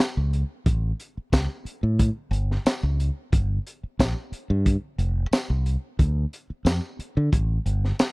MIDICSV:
0, 0, Header, 1, 4, 480
1, 0, Start_track
1, 0, Tempo, 666667
1, 474, Time_signature, 4, 2, 24, 8
1, 5846, End_track
2, 0, Start_track
2, 0, Title_t, "Fingered electric bass"
2, 0, Program_c, 0, 33
2, 123, Note_on_c, 0, 37, 76
2, 306, Note_off_c, 0, 37, 0
2, 475, Note_on_c, 0, 33, 90
2, 657, Note_off_c, 0, 33, 0
2, 953, Note_on_c, 0, 37, 77
2, 1053, Note_off_c, 0, 37, 0
2, 1318, Note_on_c, 0, 45, 90
2, 1503, Note_off_c, 0, 45, 0
2, 1662, Note_on_c, 0, 31, 94
2, 1849, Note_off_c, 0, 31, 0
2, 2039, Note_on_c, 0, 37, 90
2, 2224, Note_off_c, 0, 37, 0
2, 2393, Note_on_c, 0, 31, 88
2, 2576, Note_off_c, 0, 31, 0
2, 2875, Note_on_c, 0, 34, 85
2, 2974, Note_off_c, 0, 34, 0
2, 3240, Note_on_c, 0, 43, 99
2, 3424, Note_off_c, 0, 43, 0
2, 3588, Note_on_c, 0, 29, 89
2, 3773, Note_off_c, 0, 29, 0
2, 3959, Note_on_c, 0, 36, 81
2, 4143, Note_off_c, 0, 36, 0
2, 4312, Note_on_c, 0, 38, 89
2, 4495, Note_off_c, 0, 38, 0
2, 4787, Note_on_c, 0, 41, 85
2, 4888, Note_off_c, 0, 41, 0
2, 5162, Note_on_c, 0, 50, 95
2, 5246, Note_off_c, 0, 50, 0
2, 5273, Note_on_c, 0, 33, 101
2, 5455, Note_off_c, 0, 33, 0
2, 5513, Note_on_c, 0, 31, 89
2, 5695, Note_off_c, 0, 31, 0
2, 5846, End_track
3, 0, Start_track
3, 0, Title_t, "Muted fingered electric bass strokes"
3, 845, Note_on_c, 9, 29, 36
3, 917, Note_off_c, 9, 29, 0
3, 1188, Note_on_c, 9, 29, 35
3, 1260, Note_off_c, 9, 29, 0
3, 1910, Note_on_c, 9, 29, 35
3, 1982, Note_off_c, 9, 29, 0
3, 2761, Note_on_c, 9, 29, 37
3, 2833, Note_off_c, 9, 29, 0
3, 3110, Note_on_c, 9, 29, 37
3, 3182, Note_off_c, 9, 29, 0
3, 3826, Note_on_c, 9, 29, 34
3, 3898, Note_off_c, 9, 29, 0
3, 4681, Note_on_c, 9, 29, 31
3, 4753, Note_off_c, 9, 29, 0
3, 5033, Note_on_c, 9, 29, 36
3, 5105, Note_off_c, 9, 29, 0
3, 5758, Note_on_c, 9, 29, 32
3, 5830, Note_off_c, 9, 29, 0
3, 5846, End_track
4, 0, Start_track
4, 0, Title_t, "Drums"
4, 0, Note_on_c, 9, 38, 109
4, 71, Note_off_c, 9, 38, 0
4, 239, Note_on_c, 9, 42, 55
4, 311, Note_off_c, 9, 42, 0
4, 475, Note_on_c, 9, 42, 77
4, 476, Note_on_c, 9, 36, 105
4, 547, Note_off_c, 9, 42, 0
4, 548, Note_off_c, 9, 36, 0
4, 718, Note_on_c, 9, 42, 64
4, 790, Note_off_c, 9, 42, 0
4, 957, Note_on_c, 9, 36, 75
4, 957, Note_on_c, 9, 42, 86
4, 957, Note_on_c, 9, 54, 103
4, 962, Note_on_c, 9, 38, 107
4, 1029, Note_off_c, 9, 36, 0
4, 1029, Note_off_c, 9, 42, 0
4, 1029, Note_off_c, 9, 54, 0
4, 1034, Note_off_c, 9, 38, 0
4, 1198, Note_on_c, 9, 42, 62
4, 1270, Note_off_c, 9, 42, 0
4, 1435, Note_on_c, 9, 42, 89
4, 1436, Note_on_c, 9, 36, 79
4, 1507, Note_off_c, 9, 42, 0
4, 1508, Note_off_c, 9, 36, 0
4, 1677, Note_on_c, 9, 42, 62
4, 1749, Note_off_c, 9, 42, 0
4, 1810, Note_on_c, 9, 38, 32
4, 1882, Note_off_c, 9, 38, 0
4, 1916, Note_on_c, 9, 42, 85
4, 1916, Note_on_c, 9, 54, 101
4, 1920, Note_on_c, 9, 38, 101
4, 1988, Note_off_c, 9, 42, 0
4, 1988, Note_off_c, 9, 54, 0
4, 1992, Note_off_c, 9, 38, 0
4, 2159, Note_on_c, 9, 42, 58
4, 2231, Note_off_c, 9, 42, 0
4, 2395, Note_on_c, 9, 42, 84
4, 2397, Note_on_c, 9, 36, 104
4, 2467, Note_off_c, 9, 42, 0
4, 2469, Note_off_c, 9, 36, 0
4, 2640, Note_on_c, 9, 42, 59
4, 2712, Note_off_c, 9, 42, 0
4, 2877, Note_on_c, 9, 36, 74
4, 2879, Note_on_c, 9, 42, 77
4, 2879, Note_on_c, 9, 54, 107
4, 2883, Note_on_c, 9, 38, 102
4, 2949, Note_off_c, 9, 36, 0
4, 2951, Note_off_c, 9, 42, 0
4, 2951, Note_off_c, 9, 54, 0
4, 2955, Note_off_c, 9, 38, 0
4, 3116, Note_on_c, 9, 42, 58
4, 3188, Note_off_c, 9, 42, 0
4, 3354, Note_on_c, 9, 42, 78
4, 3356, Note_on_c, 9, 36, 84
4, 3426, Note_off_c, 9, 42, 0
4, 3428, Note_off_c, 9, 36, 0
4, 3593, Note_on_c, 9, 42, 60
4, 3665, Note_off_c, 9, 42, 0
4, 3835, Note_on_c, 9, 42, 73
4, 3835, Note_on_c, 9, 54, 100
4, 3839, Note_on_c, 9, 38, 100
4, 3907, Note_off_c, 9, 42, 0
4, 3907, Note_off_c, 9, 54, 0
4, 3911, Note_off_c, 9, 38, 0
4, 4075, Note_on_c, 9, 42, 55
4, 4147, Note_off_c, 9, 42, 0
4, 4315, Note_on_c, 9, 42, 79
4, 4316, Note_on_c, 9, 36, 105
4, 4387, Note_off_c, 9, 42, 0
4, 4388, Note_off_c, 9, 36, 0
4, 4559, Note_on_c, 9, 42, 59
4, 4631, Note_off_c, 9, 42, 0
4, 4796, Note_on_c, 9, 42, 84
4, 4796, Note_on_c, 9, 54, 112
4, 4800, Note_on_c, 9, 38, 106
4, 4868, Note_off_c, 9, 42, 0
4, 4868, Note_off_c, 9, 54, 0
4, 4872, Note_off_c, 9, 38, 0
4, 5038, Note_on_c, 9, 42, 59
4, 5110, Note_off_c, 9, 42, 0
4, 5275, Note_on_c, 9, 42, 85
4, 5276, Note_on_c, 9, 36, 91
4, 5347, Note_off_c, 9, 42, 0
4, 5348, Note_off_c, 9, 36, 0
4, 5516, Note_on_c, 9, 42, 62
4, 5588, Note_off_c, 9, 42, 0
4, 5649, Note_on_c, 9, 38, 29
4, 5721, Note_off_c, 9, 38, 0
4, 5754, Note_on_c, 9, 42, 78
4, 5754, Note_on_c, 9, 54, 106
4, 5759, Note_on_c, 9, 38, 109
4, 5826, Note_off_c, 9, 42, 0
4, 5826, Note_off_c, 9, 54, 0
4, 5831, Note_off_c, 9, 38, 0
4, 5846, End_track
0, 0, End_of_file